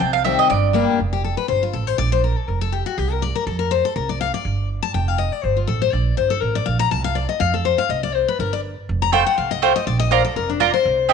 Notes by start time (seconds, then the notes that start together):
0.00 C2 C3 G5
0.13 F5
0.24 D#3 G3 C4 G4 E5
0.39 D#5
0.50 G1 G2 D5
0.73 G3 A#3 D4 G4
1.00 F1
1.13 G4
1.24 A4
1.37 B4
1.48 G1 C5
1.63 F4
1.73 A1 A4
1.87 C5
1.98 A#1 D5
2.12 C5
2.24 A#4
2.37 A4
2.48 F1 A#4
2.61 A4
2.72 G4
2.86 F#4
2.98 C2 G4
3.11 A#4
3.22 D5
3.35 A#4
3.47 F2 A4
3.59 A#4
3.71 C5
3.85 A4
3.96 C2 A#4
4.09 D5
4.21 F5
4.34 D5
4.45 G1
4.83 A5
4.94 F1 G5
5.08 F5
5.18 D#5
5.32 D5
5.43 G1 C5
5.57 F4
5.67 A1 A4
5.82 C5
5.93 A#1 D5
6.17 G1 C5
6.30 A4
6.41 A1 A#4
6.55 D5
6.66 A#1 F5
6.79 A#5
6.91 C2 A5
7.04 F5
7.15 D5
7.29 D#5
7.40 F2 F5
7.54 A4
7.65 C5
7.78 F5
7.89 C2 D#5
8.03 D5
8.15 C5
8.28 B4
8.39 G1 A#4
8.53 D5
8.89 F1
9.02 A#5
9.12 A3 F4 C5 G5
9.26 F#5
9.38 C2 F5
9.51 D#5
9.62 A3 F4 C5 G5
9.76 D#5
9.87 A#1 D5
10.00 D#5
10.11 A#3 F4 C5 D5 A#5
10.25 A4
10.36 F1 A#4
10.50 D4
10.60 A#3 F4 D5 A#5
10.74 C5
10.85 C2
11.09 C4 G4 D#5 G5